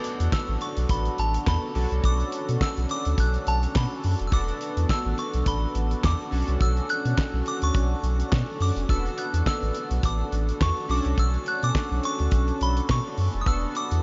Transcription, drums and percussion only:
0.04 closed hi-hat
0.20 closed hi-hat
0.32 kick, snare, clap
0.61 closed hi-hat
0.77 closed hi-hat
0.89 kick, closed hi-hat
1.05 closed hi-hat
1.18 closed hi-hat
1.34 closed hi-hat
1.47 kick, snare, clap
1.75 open hi-hat
1.91 closed hi-hat
2.04 kick, closed hi-hat
2.20 closed hi-hat
2.32 closed hi-hat
2.49 closed hi-hat
2.61 kick, snare, clap
2.77 closed hi-hat
2.89 closed hi-hat
3.05 closed hi-hat
3.18 kick, closed hi-hat
3.34 closed hi-hat
3.47 closed hi-hat
3.63 closed hi-hat
3.75 kick, snare, clap
4.04 open hi-hat
4.19 closed hi-hat
4.32 kick, closed hi-hat
4.48 closed hi-hat
4.61 closed hi-hat
4.77 closed hi-hat
4.89 kick, snare, clap
5.18 closed hi-hat
5.34 closed hi-hat
5.46 kick, closed hi-hat
5.75 closed hi-hat
5.91 closed hi-hat
6.04 kick, snare, clap
6.32 open hi-hat
6.48 closed hi-hat
6.60 kick, closed hi-hat
6.77 closed hi-hat
6.89 closed hi-hat
7.05 closed hi-hat
7.18 kick, snare, clap
7.46 closed hi-hat
7.62 closed hi-hat
7.74 kick, closed hi-hat
8.04 closed hi-hat
8.20 closed hi-hat
8.32 kick, snare, clap
8.60 open hi-hat
8.76 closed hi-hat
8.89 kick, closed hi-hat
9.06 closed hi-hat
9.18 closed hi-hat
9.34 closed hi-hat
9.46 kick, snare, clap
9.62 closed hi-hat
9.75 closed hi-hat
9.91 closed hi-hat
10.03 kick, closed hi-hat
10.32 closed hi-hat
10.49 closed hi-hat
10.61 kick, snare, clap
10.77 closed hi-hat
10.89 open hi-hat
11.05 closed hi-hat
11.18 kick, closed hi-hat
11.34 closed hi-hat
11.46 closed hi-hat
11.63 closed hi-hat
11.75 kick, snare, clap
12.03 closed hi-hat
12.19 closed hi-hat
12.31 kick, closed hi-hat
12.48 closed hi-hat
12.61 closed hi-hat
12.77 closed hi-hat
12.89 kick, snare, clap
13.18 open hi-hat
13.33 closed hi-hat
13.46 kick, closed hi-hat
13.75 closed hi-hat
13.91 closed hi-hat

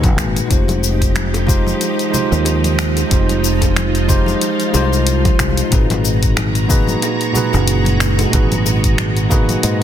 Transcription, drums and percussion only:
0.03 kick, closed hi-hat, high bongo, high conga, cabasa
0.18 finger snap, kick, cabasa
0.36 closed hi-hat, cabasa
0.51 kick, closed hi-hat, cabasa
0.68 closed hi-hat, high bongo, high conga, cabasa
0.84 cabasa
1.02 kick, closed hi-hat, cabasa
1.15 finger snap, closed hi-hat, high conga, cabasa
1.34 closed hi-hat, high bongo, cabasa
1.47 kick, low conga, cabasa
1.66 high conga, cabasa
1.81 closed hi-hat, high bongo, cabasa
1.99 closed hi-hat, cabasa
2.13 high conga, low conga, cabasa
2.32 cabasa
2.45 closed hi-hat, high bongo, cabasa
2.64 closed hi-hat, high conga, cabasa
2.79 finger snap, cabasa
2.97 closed hi-hat, high bongo, cabasa
3.11 kick, closed hi-hat, cabasa
3.29 closed hi-hat, high conga, cabasa
3.44 cabasa
3.61 kick, closed hi-hat, high bongo, cabasa
3.76 finger snap, closed hi-hat, high conga, cabasa
3.95 closed hi-hat, cabasa
4.09 kick, high bongo, low conga, cabasa
4.26 high conga, cabasa
4.41 closed hi-hat, cabasa
4.60 closed hi-hat, cabasa
4.74 high bongo, high conga, cabasa
4.93 cabasa
5.07 closed hi-hat, cabasa
5.25 kick, closed hi-hat, high bongo, high conga, cabasa
5.39 finger snap, kick, cabasa
5.57 closed hi-hat, cabasa
5.72 kick, closed hi-hat, cabasa
5.90 closed hi-hat, high bongo, high conga, cabasa
6.05 cabasa
6.23 kick, closed hi-hat, cabasa
6.37 finger snap, closed hi-hat, high bongo, high conga, cabasa
6.55 closed hi-hat, cabasa
6.70 kick, low conga, cabasa
6.87 high conga, cabasa
7.02 closed hi-hat, high bongo, cabasa
7.21 closed hi-hat, cabasa
7.35 high conga, low conga, cabasa
7.53 high bongo, cabasa
7.68 closed hi-hat, cabasa
7.85 closed hi-hat, high conga, cabasa
8.00 finger snap, cabasa
8.19 closed hi-hat, high bongo, cabasa
8.33 kick, closed hi-hat, cabasa
8.52 closed hi-hat, high conga, cabasa
8.66 high bongo, cabasa
8.84 kick, closed hi-hat, cabasa
8.98 finger snap, closed hi-hat, high conga, cabasa
9.17 closed hi-hat, cabasa
9.31 kick, high bongo, low conga, cabasa
9.49 closed hi-hat, high conga, cabasa
9.63 closed hi-hat, cabasa

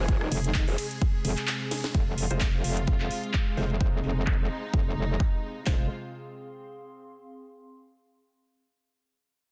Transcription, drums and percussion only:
0.08 kick, closed hi-hat
0.21 cross-stick
0.32 open hi-hat, ride
0.44 closed hi-hat
0.54 kick, clap, closed hi-hat
0.68 open hi-hat
0.78 open hi-hat, ride
0.91 closed hi-hat
1.01 kick, closed hi-hat
1.25 open hi-hat, ride
1.37 clap, closed hi-hat
1.47 clap, closed hi-hat
1.71 snare, open hi-hat, ride
1.84 snare, closed hi-hat
1.94 kick, closed hi-hat
2.18 open hi-hat
2.31 closed hi-hat
2.40 kick, clap, closed hi-hat
2.64 open hi-hat
2.77 closed hi-hat
2.87 kick, closed hi-hat
3.00 clap
3.11 open hi-hat
3.24 closed hi-hat
3.33 kick, clap, closed hi-hat
3.57 open hi-hat
3.70 closed hi-hat
3.81 kick
4.04 open hi-hat
4.17 closed hi-hat
4.27 kick, clap
4.40 open hi-hat
4.50 open hi-hat
4.74 kick
4.97 open hi-hat
5.09 clap
5.20 kick, clap
5.66 kick, snare, clap

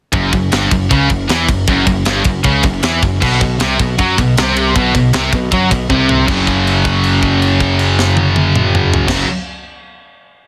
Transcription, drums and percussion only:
0.13 kick, ride
0.33 kick, ride
0.52 snare, ride
0.71 kick, ride
0.91 kick, ride
1.10 kick, ride
1.29 snare, ride
1.49 kick, ride
1.67 kick, ride
1.87 kick, ride
2.05 snare, ride
2.24 kick, ride
2.44 kick, ride
2.63 kick, ride
2.83 snare, ride
3.02 kick, ride
3.22 kick, crash
3.41 kick, ride
3.60 snare, ride
3.79 kick, ride
3.98 kick, ride
4.18 kick, ride
4.37 snare, ride
4.57 ride
4.76 kick, ride
4.95 kick, ride
5.13 snare, ride
5.33 kick, ride
5.52 kick, ride
5.71 kick, ride
5.90 kick
6.09 floor tom
6.28 kick, crash
6.47 kick, crash
6.67 crash
6.85 kick, crash
7.04 crash
7.22 kick, crash
7.42 crash
7.60 kick, crash
7.79 crash
7.99 snare
8.17 high tom
8.36 high tom
8.55 mid tom
8.75 mid tom
8.94 floor tom
9.08 kick, snare, crash

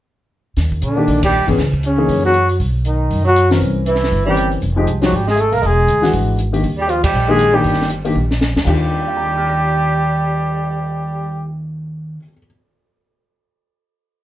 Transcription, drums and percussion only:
0.57 kick, snare, open hi-hat
0.72 kick
0.82 closed hi-hat
1.07 kick, open hi-hat
1.23 kick, ride
1.48 kick, open hi-hat
1.58 kick, snare, open hi-hat
1.73 kick
1.83 closed hi-hat
2.09 kick, open hi-hat
2.34 closed hi-hat
2.49 open hi-hat
2.60 kick, open hi-hat
2.85 closed hi-hat
3.11 kick, open hi-hat
3.36 closed hi-hat
3.51 snare, open hi-hat
3.61 kick, open hi-hat
3.86 closed hi-hat
3.95 snare
4.03 snare
4.12 kick, open hi-hat
4.37 closed hi-hat
4.52 open hi-hat
4.62 kick, open hi-hat
4.87 closed hi-hat
5.02 snare, open hi-hat
5.12 kick, open hi-hat
5.28 snare
5.37 closed hi-hat
5.52 open hi-hat
5.63 kick, open hi-hat
5.88 closed hi-hat
6.03 snare, open hi-hat
6.13 kick, open hi-hat
6.38 closed hi-hat
6.54 open hi-hat
6.64 kick, open hi-hat
6.89 closed hi-hat
7.04 kick, ride
7.39 closed hi-hat
7.64 kick, open hi-hat
7.73 snare
7.82 snare
7.89 closed hi-hat
8.05 open hi-hat
8.31 snare
8.41 snare
8.57 snare
8.67 kick, crash
8.82 cymbal swell

